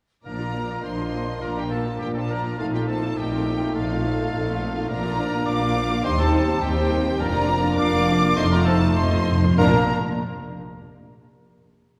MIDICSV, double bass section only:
0, 0, Header, 1, 2, 480
1, 0, Start_track
1, 0, Key_signature, -2, "major"
1, 0, Tempo, 579151
1, 220, Time_signature, 4, 2, 24, 8
1, 6457, Tempo, 600601
1, 9819, End_track
2, 0, Start_track
2, 0, Title_t, "Double bass section"
2, 0, Program_c, 0, 48
2, 212, Note_on_c, 0, 34, 41
2, 642, Note_off_c, 0, 34, 0
2, 693, Note_on_c, 0, 34, 48
2, 1122, Note_off_c, 0, 34, 0
2, 1177, Note_on_c, 0, 34, 55
2, 1606, Note_off_c, 0, 34, 0
2, 1661, Note_on_c, 0, 34, 53
2, 2090, Note_off_c, 0, 34, 0
2, 2142, Note_on_c, 0, 34, 51
2, 2571, Note_off_c, 0, 34, 0
2, 2627, Note_on_c, 0, 34, 59
2, 3053, Note_off_c, 0, 34, 0
2, 3104, Note_on_c, 0, 34, 65
2, 3529, Note_off_c, 0, 34, 0
2, 3587, Note_on_c, 0, 34, 65
2, 4004, Note_off_c, 0, 34, 0
2, 4058, Note_on_c, 0, 34, 62
2, 4476, Note_off_c, 0, 34, 0
2, 4530, Note_on_c, 0, 34, 65
2, 4954, Note_off_c, 0, 34, 0
2, 5007, Note_on_c, 0, 39, 84
2, 5434, Note_off_c, 0, 39, 0
2, 5489, Note_on_c, 0, 39, 79
2, 5915, Note_off_c, 0, 39, 0
2, 5968, Note_on_c, 0, 29, 77
2, 6399, Note_off_c, 0, 29, 0
2, 6449, Note_on_c, 0, 29, 89
2, 6868, Note_off_c, 0, 29, 0
2, 6919, Note_on_c, 0, 29, 93
2, 7345, Note_off_c, 0, 29, 0
2, 7399, Note_on_c, 0, 29, 75
2, 7836, Note_off_c, 0, 29, 0
2, 7890, Note_on_c, 0, 34, 74
2, 8160, Note_off_c, 0, 34, 0
2, 9819, End_track
0, 0, End_of_file